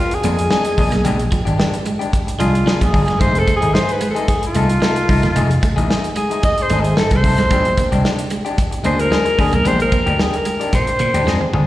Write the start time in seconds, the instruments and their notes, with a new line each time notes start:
Already playing: alto saxophone F4
0.11 alto saxophone G#4, muted clean electric guitar stroke, closed hi-hat
0.24 slap bass F2, clean electric guitar G#3 A#3 D4 G#4, closed hi-hat
0.38 muted clean electric guitar stroke, closed hi-hat
0.51 clean electric guitar G#3 D4 G#4, snare
0.65 muted clean electric guitar stroke, closed hi-hat
0.77 slap bass A#1, clean electric guitar G#3 D4 G#4, kick, open hi-hat
0.91 slap bass B1, clean electric guitar A#3, muted clean electric guitar stroke, snare, closed hi-hat
1.04 slap bass A#1, clean electric guitar G#3 D4 G4, closed hi-hat
1.19 muted clean electric guitar stroke, closed hi-hat
1.31 clean electric guitar F3, muted clean electric guitar stroke, kick, closed hi-hat
1.45 slap bass G#1, clean electric guitar G#3 D4 G4, muted clean electric guitar stroke, closed hi-hat
1.58 clean electric guitar G#3 D4 G4, snare
1.74 closed hi-hat
1.85 clean electric guitar G#3, muted clean electric guitar stroke, closed hi-hat
1.99 clean electric guitar G#3 D4 G4, closed hi-hat
2.12 muted clean electric guitar stroke, kick, closed hi-hat
2.27 muted clean electric guitar stroke, closed hi-hat
2.39 slap bass C2, clean electric guitar F3 G#3 D4 G#4, alto saxophone F4, closed hi-hat
2.53 muted clean electric guitar stroke, closed hi-hat
2.66 clean electric guitar F3 G#3 D4 G#4, snare
2.80 slap bass A#1, muted clean electric guitar stroke, kick, closed hi-hat
2.84 alto saxophone G#4
2.92 slap bass G1, clean electric guitar G#3 D4 G#4, kick, open hi-hat
3.06 slap bass F#1, clean electric guitar G#3, muted clean electric guitar stroke, snare, closed hi-hat
3.19 slap bass F1, clean electric guitar G#3 A3 D#4 G#4, alto saxophone C5, kick, closed hi-hat
3.34 muted clean electric guitar stroke, closed hi-hat
3.39 alto saxophone A4
3.47 clean electric guitar A3, muted clean electric guitar stroke, kick, closed hi-hat
3.56 alto saxophone G#4
3.61 slap bass G#1, clean electric guitar A3 D#4 G#4, muted clean electric guitar stroke, closed hi-hat
3.73 clean electric guitar A3 D#4 G#4, alto saxophone C5, snare
3.89 alto saxophone B4, closed hi-hat
4.00 clean electric guitar G#3, muted clean electric guitar stroke, closed hi-hat
4.10 alto saxophone A4
4.15 clean electric guitar A3 D#4 G#4, closed hi-hat
4.28 alto saxophone G#4, muted clean electric guitar stroke, kick, closed hi-hat
4.42 muted clean electric guitar stroke, closed hi-hat
4.47 alto saxophone F4
4.55 slap bass C2, clean electric guitar A3 D#4 A4, closed hi-hat
4.70 muted clean electric guitar stroke, closed hi-hat
4.82 clean electric guitar G#3 A3 D#4 A4, snare
4.96 muted clean electric guitar stroke, closed hi-hat
5.09 slap bass C2, clean electric guitar A3 D#4 A4, kick, open hi-hat
5.23 slap bass F#1, clean electric guitar A3, muted clean electric guitar stroke, snare, closed hi-hat
5.35 slap bass F1, clean electric guitar G#3 A3 D#4 G#4, closed hi-hat
5.50 muted clean electric guitar stroke, closed hi-hat
5.62 clean electric guitar A3, muted clean electric guitar stroke, kick, closed hi-hat
5.76 slap bass A1, clean electric guitar A3 D#4 G#4, muted clean electric guitar stroke, closed hi-hat
5.89 clean electric guitar A3 D#4 G#4, snare
6.04 closed hi-hat
6.16 clean electric guitar G#3, alto saxophone G#4, muted clean electric guitar stroke, closed hi-hat
6.30 clean electric guitar A3 D#4 G#4, closed hi-hat
6.43 alto saxophone D#5, muted clean electric guitar stroke, kick, closed hi-hat
6.58 muted clean electric guitar stroke, closed hi-hat
6.62 alto saxophone C5
6.70 slap bass G#1, clean electric guitar A3 D#4 A4, closed hi-hat
6.81 alto saxophone G#4, closed hi-hat
6.85 muted clean electric guitar stroke
6.97 clean electric guitar G#3 A3 D#4 A4, alto saxophone A4, snare
7.11 slap bass C2, muted clean electric guitar stroke, kick, closed hi-hat
7.16 alto saxophone C5
7.24 slap bass C2, clean electric guitar A3 D#4 A4, kick, open hi-hat
7.38 slap bass B1, clean electric guitar G#3, muted clean electric guitar stroke, snare, closed hi-hat
7.50 slap bass A#1, clean electric guitar G#3 D4 G4, kick, closed hi-hat
7.65 muted clean electric guitar stroke, closed hi-hat
7.77 clean electric guitar A#3, muted clean electric guitar stroke, kick, closed hi-hat
7.92 slap bass C2, clean electric guitar G#3 D4 G4, muted clean electric guitar stroke, closed hi-hat
8.04 clean electric guitar G#3 D4 G4, snare
8.19 closed hi-hat
8.30 clean electric guitar G#3, muted clean electric guitar stroke, closed hi-hat
8.45 clean electric guitar G#3 D4 G4, closed hi-hat
8.58 muted clean electric guitar stroke, kick, closed hi-hat
8.71 muted clean electric guitar stroke, closed hi-hat
8.84 slap bass D2, clean electric guitar G#3 A#3 D4 G#4, alto saxophone C5, closed hi-hat
8.98 alto saxophone A#4, muted clean electric guitar stroke, closed hi-hat
9.11 clean electric guitar G#3 D4 G#4, snare
9.26 muted clean electric guitar stroke, closed hi-hat
9.38 slap bass D2, clean electric guitar G#3 D4 G#4, alto saxophone G#4, kick, open hi-hat
9.53 slap bass B1, clean electric guitar A#3, alto saxophone A#4, muted clean electric guitar stroke, closed hi-hat
9.65 slap bass A#1, clean electric guitar G#3 D4 G4, alto saxophone C5, closed hi-hat
9.79 alto saxophone A#4, muted clean electric guitar stroke, closed hi-hat
9.92 clean electric guitar A#3, muted clean electric guitar stroke, kick, closed hi-hat
10.06 slap bass D2, clean electric guitar G#3 D4 G4, muted clean electric guitar stroke, closed hi-hat
10.19 clean electric guitar G#3 D4 G4, alto saxophone G#4, snare
10.34 alto saxophone A#4, closed hi-hat
10.45 clean electric guitar G#3, muted clean electric guitar stroke, closed hi-hat
10.60 clean electric guitar G#3 D4 G4, closed hi-hat
10.73 slap bass A#2, alto saxophone C5, muted clean electric guitar stroke, kick, closed hi-hat
10.87 muted clean electric guitar stroke, closed hi-hat
10.99 slap bass A#2, clean electric guitar A#3, closed hi-hat
11.14 slap bass D2, clean electric guitar G#3 D4 G4, closed hi-hat
11.26 slap bass F2, clean electric guitar G#3 D4 G#4, snare
11.41 muted clean electric guitar stroke, high tom
11.53 slap bass G1, clean electric guitar G#3 D4 G#4, mid tom